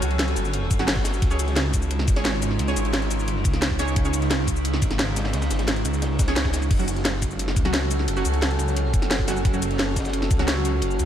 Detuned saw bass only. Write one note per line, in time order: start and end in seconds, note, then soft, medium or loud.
0.02 0.35 C#2 loud
0.36 0.69 G1 loud
0.71 1.21 G1 loud
1.22 2.07 C#2 loud
2.08 2.58 G#1 loud
2.59 2.75 C#2 loud
2.76 3.09 G#1 loud
3.11 3.44 G#1 loud
3.45 3.95 C#2 medium
3.96 4.81 C#2 loud
4.82 5.32 G#1 loud
5.34 5.49 C#2 loud
5.51 5.84 G#1 loud
5.85 6.35 C#2 loud
6.36 6.69 C#2 loud
6.71 7.55 F#1 loud
7.56 8.07 C#2 loud
8.08 8.24 F#1 loud
8.25 8.58 C#2 loud
8.59 8.92 C#2 loud
8.94 9.44 F#1 loud
9.45 10.29 F#1 loud
10.31 10.81 C#2 loud
10.82 10.98 F#1 loud
10.99 11.05 C#2 loud